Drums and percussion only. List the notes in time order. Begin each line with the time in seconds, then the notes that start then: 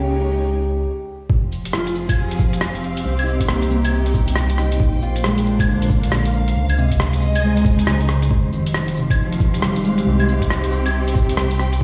1.30 kick
1.52 cabasa
1.65 closed hi-hat
1.73 cross-stick
1.87 closed hi-hat
1.95 cabasa
2.09 kick, closed hi-hat, claves
2.31 closed hi-hat
2.39 kick, cabasa
2.53 closed hi-hat
2.61 cross-stick
2.75 closed hi-hat
2.83 cabasa
2.97 closed hi-hat
3.19 closed hi-hat, claves
3.27 cabasa
3.40 kick, closed hi-hat
3.48 cross-stick
3.62 closed hi-hat
3.71 cabasa
3.85 closed hi-hat, claves
4.06 closed hi-hat
4.14 kick, cabasa
4.28 closed hi-hat
4.36 cross-stick
4.50 closed hi-hat
4.58 cross-stick, cabasa
4.72 closed hi-hat
4.80 kick
5.02 cabasa
5.16 closed hi-hat
5.24 cross-stick
5.38 closed hi-hat
5.46 cabasa
5.59 kick, closed hi-hat, claves
5.82 closed hi-hat
5.90 kick, cabasa
6.03 closed hi-hat
6.12 cross-stick
6.26 closed hi-hat
6.34 cabasa
6.48 closed hi-hat
6.70 closed hi-hat, claves
6.78 cabasa
6.91 kick, closed hi-hat
7.00 cross-stick
7.13 closed hi-hat
7.21 cabasa
7.35 closed hi-hat, claves
7.57 closed hi-hat
7.65 kick, cabasa
7.79 closed hi-hat
7.87 cross-stick
8.01 closed hi-hat
8.09 cross-stick, cabasa
8.22 closed hi-hat
8.31 kick
8.53 cabasa
8.66 closed hi-hat
8.74 cross-stick
8.88 closed hi-hat
8.97 cabasa
9.10 kick, closed hi-hat, claves
9.32 closed hi-hat
9.40 kick, cabasa
9.54 closed hi-hat
9.62 cross-stick
9.76 closed hi-hat
9.84 cabasa
9.98 closed hi-hat
10.20 closed hi-hat, claves
10.28 cabasa
10.41 kick, closed hi-hat
10.50 cross-stick
10.64 closed hi-hat
10.72 cabasa
10.86 closed hi-hat, claves
11.08 closed hi-hat
11.15 kick, cabasa
11.29 closed hi-hat
11.37 cross-stick
11.51 closed hi-hat
11.59 cross-stick, cabasa
11.73 closed hi-hat